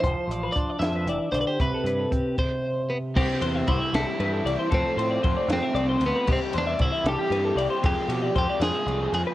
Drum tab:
CC |------|---x--|x-----|------|
RD |------|------|-xxxxx|xxxxxx|
HH |xxxxxx|xxx---|------|------|
SD |---o--|------|---o--|---o--|
BD |o-o---|o-oo--|o-o---|o-o---|

CC |x-----|------|
RD |-xxxxx|xxxxxx|
HH |------|------|
SD |---o--|---o--|
BD |o-o---|o-o---|